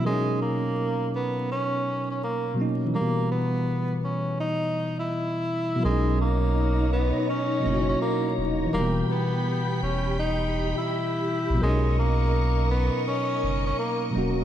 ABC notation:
X:1
M:4/4
L:1/16
Q:"Swing 16ths" 1/4=83
K:B
V:1 name="String machine"
z16 | z16 | [Dca]16 | [=G=gb]16 |
[Adc']16 |]
V:2 name="Tenor saxophone"
G,2 A,4 B,2 C3 C A,2 z2 | A,2 B,4 C2 D3 E4- E | G,2 A,4 B,2 C3 C A,2 z2 | A,2 B,4 C2 D3 E4- E |
G,2 A,4 B,2 C3 C A,2 z2 |]
V:3 name="Tine electric piano"
[B,,F,CDA]12- [B,,F,CDA]2 [B,,F,A,CD]2 | [B,,E,=G,]16 | [B,,F,CDA]8- [B,,F,CDA]2 [B,,F,A,CEF]6 | [B,,E,=G,]16 |
[B,,F,CDA]12- [B,,F,CDA]2 [B,,F,A,CF]2 |]
V:4 name="Sub bass" clef=bass
z16 | z16 | B,,,6- B,,, z3 F,,,2 z2 D,,,2 | E,,,2 z4 E,,,4- E,,, z4 A,,, |
B,,,6- B,,, z3 F,,,2 z2 D,,,2 |]